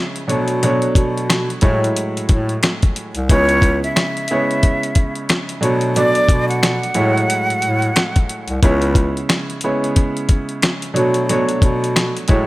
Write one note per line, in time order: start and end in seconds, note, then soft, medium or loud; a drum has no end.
0.00 0.21 C#3 medium
0.00 0.21 G#3 medium
0.00 0.22 B3 medium
0.00 0.22 E4 medium
0.00 0.22 C#5 loud
0.16 closed hi-hat medium
0.27 0.60 B2 medium
0.27 0.86 B2 loud
0.27 0.60 F#3 medium
0.27 0.60 A3 medium
0.27 0.60 D4 medium
0.27 0.60 C#5 medium
0.27 closed hi-hat medium
0.48 closed hi-hat medium
0.63 1.56 B2 medium
0.63 1.56 F#3 medium
0.63 1.56 A3 medium
0.63 1.57 D4 medium
0.63 1.57 C#5 loud
0.63 closed hi-hat medium
0.82 closed hi-hat medium
0.95 1.52 B2 medium
0.95 kick loud
0.95 closed hi-hat medium
1.18 closed hi-hat medium
1.30 cross-stick medium
1.30 snare loud
1.30 closed hi-hat medium
1.50 closed hi-hat medium
1.61 3.18 A2 medium
1.61 1.91 A2 loud
1.61 3.18 F#3 medium
1.61 3.18 G#3 medium
1.61 3.18 E4 medium
1.61 3.18 C#5 loud
1.61 kick medium
1.61 closed hi-hat medium
1.84 closed hi-hat medium
1.96 closed hi-hat loud
2.16 2.22 A2 soft
2.16 closed hi-hat medium
2.29 2.58 A2 medium
2.29 kick medium
2.29 closed hi-hat medium
2.49 closed hi-hat soft
2.63 cross-stick medium
2.63 snare loud
2.63 closed hi-hat loud
2.82 kick medium
2.82 closed hi-hat medium
2.96 closed hi-hat medium
3.15 3.27 C2 medium
3.15 closed hi-hat medium
3.29 3.86 C#2 loud
3.29 4.23 C#3 medium
3.29 4.23 G#3 medium
3.29 4.23 B3 medium
3.29 4.23 E4 medium
3.29 4.23 C#5 loud
3.29 3.80 C#5 loud
3.29 kick loud
3.29 closed hi-hat loud
3.49 closed hi-hat medium
3.62 kick loud
3.62 closed hi-hat medium
3.84 5.26 E5 medium
3.84 closed hi-hat medium
3.96 cross-stick medium
3.96 snare loud
3.96 closed hi-hat medium
4.17 closed hi-hat medium
4.28 5.55 C#3 medium
4.28 5.55 G#3 medium
4.28 5.55 B3 medium
4.28 5.55 E4 medium
4.28 5.55 C#5 loud
4.28 closed hi-hat medium
4.51 closed hi-hat medium
4.63 kick medium
4.63 closed hi-hat loud
4.83 closed hi-hat medium
4.95 kick medium
4.95 closed hi-hat medium
5.15 closed hi-hat soft
5.29 cross-stick medium
5.29 snare loud
5.29 closed hi-hat loud
5.49 closed hi-hat medium
5.61 5.93 B2 medium
5.61 6.19 B2 loud
5.61 5.93 F#3 medium
5.61 5.93 A3 medium
5.61 5.93 D4 medium
5.61 5.93 C#5 medium
5.61 closed hi-hat medium
5.81 closed hi-hat medium
5.96 6.89 B2 medium
5.96 6.90 F#3 medium
5.96 6.90 A3 medium
5.96 6.90 D4 medium
5.96 6.46 D5 loud
5.96 6.90 D5 loud
5.96 closed hi-hat loud
6.15 closed hi-hat medium
6.29 6.85 B2 loud
6.29 kick loud
6.29 closed hi-hat medium
6.49 8.59 F#5 medium
6.49 closed hi-hat medium
6.63 cross-stick medium
6.63 snare loud
6.63 closed hi-hat medium
6.83 closed hi-hat medium
6.94 8.51 A2 medium
6.94 7.24 A2 loud
6.94 8.51 F#3 medium
6.94 8.51 G#3 medium
6.94 8.52 E4 medium
6.94 8.52 C#5 loud
6.94 closed hi-hat medium
7.17 closed hi-hat medium
7.30 closed hi-hat loud
7.49 7.55 A2 soft
7.49 closed hi-hat medium
7.62 7.91 A2 medium
7.62 closed hi-hat medium
7.82 closed hi-hat soft
7.96 cross-stick loud
7.96 snare loud
7.96 closed hi-hat loud
8.16 kick medium
8.16 closed hi-hat medium
8.29 closed hi-hat medium
8.48 8.61 C2 medium
8.48 closed hi-hat medium
8.63 9.19 C#2 loud
8.63 9.56 C#3 medium
8.63 9.56 G#3 medium
8.63 9.56 B3 medium
8.63 9.57 E4 medium
8.63 9.57 C#5 loud
8.63 kick loud
8.63 closed hi-hat loud
8.82 closed hi-hat medium
8.95 kick loud
8.95 closed hi-hat medium
9.17 closed hi-hat medium
9.29 cross-stick medium
9.29 snare loud
9.29 closed hi-hat medium
9.50 closed hi-hat medium
9.61 10.88 C#3 medium
9.61 10.88 G#3 medium
9.61 10.88 B3 medium
9.61 10.88 E4 medium
9.61 10.88 C#5 loud
9.61 closed hi-hat medium
9.84 closed hi-hat medium
9.96 kick medium
9.96 closed hi-hat loud
10.17 closed hi-hat medium
10.29 kick medium
10.29 closed hi-hat medium
10.49 closed hi-hat soft
10.62 cross-stick medium
10.62 snare loud
10.62 closed hi-hat loud
10.82 closed hi-hat medium
10.94 11.26 B2 medium
10.94 11.52 B2 loud
10.94 11.26 F#3 medium
10.94 11.26 A3 medium
10.94 11.26 D4 medium
10.94 11.27 C#5 medium
10.94 closed hi-hat medium
11.14 closed hi-hat medium
11.29 12.23 B2 medium
11.29 12.23 F#3 medium
11.29 12.23 A3 medium
11.29 12.23 D4 medium
11.29 12.23 C#5 loud
11.29 closed hi-hat loud
11.49 closed hi-hat medium
11.62 12.18 B2 loud
11.62 kick loud
11.62 closed hi-hat medium
11.84 closed hi-hat medium
11.96 cross-stick medium
11.96 snare loud
11.96 closed hi-hat medium
12.17 closed hi-hat medium
12.28 12.47 A2 medium
12.28 12.47 A2 loud
12.28 12.47 F#3 medium
12.28 12.47 G#3 medium
12.28 12.47 E4 medium
12.28 12.47 C#5 loud
12.28 kick medium
12.28 closed hi-hat medium